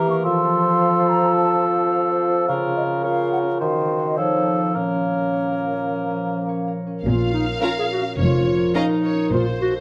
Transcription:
0.00 0.25 E3 medium
0.00 0.27 E3 soft
0.00 0.24 G4 soft
0.00 0.27 G4 soft
0.00 0.20 A#4 medium
0.00 0.27 A#4 soft
0.06 0.27 A#3 soft
0.06 0.16 C#6 medium
0.23 2.44 F3 soft
0.23 3.63 F3 soft
0.23 2.44 F4 medium
0.23 2.44 A4 medium
0.23 1.10 C6 medium
0.44 1.17 F4 soft
0.62 0.99 C5 soft
0.81 1.91 F5 soft
1.00 1.73 C5 soft
1.09 1.36 A#5 medium
1.19 1.55 F4 soft
1.36 2.51 C4 soft
1.36 1.64 A5 medium
1.56 2.28 F4 soft
1.74 2.10 C5 soft
1.92 3.63 F5 soft
2.11 2.50 C5 soft
2.29 3.63 F4 soft
2.48 3.63 C#3 soft
2.48 3.57 C#3 soft
2.48 3.00 F4 soft
2.48 3.00 A#4 soft
2.48 2.54 F5 medium
2.67 3.41 C#4 soft
2.77 2.83 D#5 medium
2.86 3.22 A#4 soft
3.04 3.60 F4 soft
3.04 3.59 A#4 soft
3.04 3.63 C#5 soft
3.04 3.32 F5 medium
3.23 3.63 A#4 soft
3.32 3.39 F#5 medium
3.42 3.63 C#4 soft
3.60 4.19 D#3 soft
3.60 4.20 D#3 soft
3.60 4.17 F#4 soft
3.60 4.16 C5 soft
3.60 4.02 F5 medium
3.80 4.78 C4 soft
3.98 4.19 F#4 soft
3.98 4.77 C5 soft
4.05 4.19 D#5 soft
4.17 4.74 F3 soft
4.17 5.89 F3 soft
4.17 4.74 D#4 soft
4.17 4.77 A4 soft
4.17 4.60 C#5 medium
4.36 4.77 D#4 soft
4.55 8.45 F4 soft
4.55 4.77 A4 soft
4.62 4.68 C5 soft
4.75 7.05 A#2 soft
4.75 6.73 A#3 soft
4.75 6.73 C#4 soft
4.75 6.77 A#4 soft
4.75 6.45 C#5 medium
4.94 5.71 C#4 soft
5.14 5.51 A#4 soft
5.33 6.47 C#5 soft
5.52 6.29 A#4 soft
5.72 6.09 C#4 soft
5.91 8.18 F3 soft
6.10 6.86 C#4 soft
6.30 6.66 A#4 soft
6.49 7.62 C#5 soft
6.68 7.43 A#4 soft
6.87 7.24 C#4 soft
7.05 7.50 A#1 soft
7.05 9.31 A#2 soft
7.05 7.51 A#2 soft
7.05 7.32 F4 medium
7.05 8.15 F5 medium
7.25 8.00 C#4 soft
7.34 7.46 D#4 soft
7.44 7.81 A#4 soft
7.62 7.70 C#4 soft
7.62 7.69 F4 soft
7.62 7.70 A#4 soft
7.62 8.74 C#5 soft
7.62 7.71 F5 soft
7.62 7.71 A#5 soft
7.79 7.84 G#4 soft
7.79 8.56 A#4 soft
7.92 8.04 F#4 soft
8.01 8.37 C#4 soft
8.18 8.63 F1 soft
8.18 8.64 F2 soft
8.18 9.80 F3 soft
8.18 8.75 F4 soft
8.18 8.74 C#5 soft
8.38 9.12 C#4 soft
8.57 8.93 A#4 soft
8.75 8.83 C#4 soft
8.75 9.31 D#4 medium
8.75 8.83 A#4 soft
8.75 9.34 C#5 soft
8.75 8.83 D#5 soft
8.75 8.84 F5 soft
8.75 8.84 A#5 soft
8.94 9.34 A#4 soft
9.04 9.31 C#5 soft
9.13 9.34 C#4 soft
9.31 9.77 A#1 soft
9.31 9.80 A#2 soft
9.31 9.77 A#2 soft
9.31 9.46 F4 soft
9.31 9.80 C5 soft
9.51 9.80 D#4 soft
9.61 9.74 F#4 medium
9.70 9.80 A4 soft

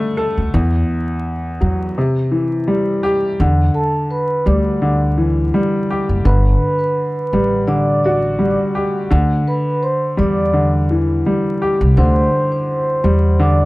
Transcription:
0.00 0.54 D3 medium
0.00 0.54 G3 medium
0.00 0.54 A3 medium
0.17 0.53 A4 medium
0.38 0.50 D2 medium
0.54 1.97 E2 medium
0.54 0.82 E2 loud
1.61 1.90 E2 medium
1.61 1.96 F#3 medium
1.98 3.40 C3 medium
2.32 3.39 E3 medium
2.68 3.39 G3 medium
3.03 3.39 G4 loud
3.40 3.68 E2 loud
3.40 4.80 D3 medium
3.74 4.07 A4 medium
3.74 4.07 A5 medium
4.11 4.43 B4 medium
4.11 4.43 B5 medium
4.46 5.50 D2 loud
4.46 5.53 G3 medium
4.46 4.98 D5 medium
4.46 4.99 D6 medium
4.82 6.23 D3 medium
5.18 6.25 E3 medium
5.54 6.25 G3 medium
5.91 6.26 G4 medium
6.09 6.22 F#1 medium
6.25 6.54 G1 loud
6.25 7.66 D3 medium
6.25 6.77 B4 loud
6.25 6.78 B5 medium
6.79 7.63 B4 medium
6.79 7.64 B5 medium
7.33 8.55 A1 medium
7.33 8.37 G3 medium
7.68 9.09 D3 medium
7.68 8.00 D5 loud
7.68 8.00 D6 medium
8.04 9.12 F#4 medium
8.04 8.56 D5 medium
8.04 8.56 D6 medium
8.39 9.11 G3 medium
8.75 9.11 G4 medium
9.11 9.40 D2 loud
9.11 10.52 D3 loud
9.48 9.79 B4 medium
9.48 9.80 B5 medium
9.83 10.15 C5 medium
9.83 10.15 C6 medium
10.17 11.21 E2 medium
10.17 11.25 G3 medium
10.17 10.70 D5 medium
10.17 10.71 D6 medium
10.53 11.96 D3 medium
10.91 13.65 E3 medium
11.26 13.02 G3 medium
11.62 13.65 G4 medium
11.81 11.94 C2 loud
11.97 12.25 D2 loud
11.97 13.38 D3 loud
11.97 12.49 C5 loud
11.97 12.49 C6 medium
12.52 13.36 C5 medium
12.52 13.36 C6 medium
13.04 13.65 E2 medium
13.04 13.65 G3 medium
13.40 13.65 D3 loud
13.40 13.65 D5 medium
13.40 13.65 D6 medium

